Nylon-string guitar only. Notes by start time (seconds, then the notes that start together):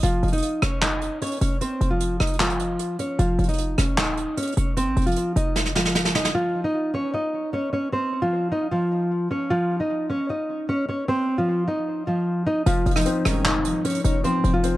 0.03 F3 F4
0.33 D#4 D#5
0.62 C#4 C#5
0.82 D#4 D#5
1.22 C#4 C#5
1.41 C#4 C#5
1.61 C4 C5
1.91 F3 F4
2.20 D#4 D#5
2.40 F3 F4
2.99 C#4 C#5
3.19 F3 F4
3.48 D#4 D#5
3.78 C#4 C#5
3.98 D#4 D#5
4.37 C#4 C#5
4.57 C#4 C#5
4.77 C4 C5
5.06 F3 F4
5.36 D#4 D#5
5.75 F3 F4
6.15 D#4 D#5
6.35 F3 F4
6.64 D#4 D#5
6.94 C#4 C#5
7.14 D#4 D#5
7.53 C#4 C#5
7.73 C#4 C#5
7.92 C4 C5
8.22 F3 F4
8.52 D#4 D#5
8.71 F3 F4
9.31 C#4 C#5
9.50 F3 F4
9.80 D#4 D#5
10.10 C#4 C#5
10.29 D#4 D#5
10.69 C#4 C#5
10.89 C#4 C#5
11.08 C4 C5
11.38 F3 F4
11.68 D#4 D#5
12.07 F3 F4
12.47 D#4 D#5
12.66 F3 F4
12.96 D#4 D#5
13.25 C#4 C#5
13.45 D#4 D#5
13.85 C#4 C#5
14.04 C#4 C#5
14.24 C4 C5
14.54 F3 F4